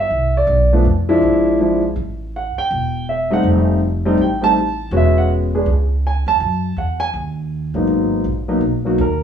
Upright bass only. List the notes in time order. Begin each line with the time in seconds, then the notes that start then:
0.10 C2
0.47 B1
0.84 F2
1.22 A#1
1.96 A1
2.57 muted upright bass stroke
2.71 E1
3.43 F1
4.18 A1
4.91 E1
5.66 C#2
6.27 D#2
6.40 F#2
6.77 E2
7.14 D#2
7.74 A1
7.87 G#1
8.24 A#1
8.61 B1
8.98 D#2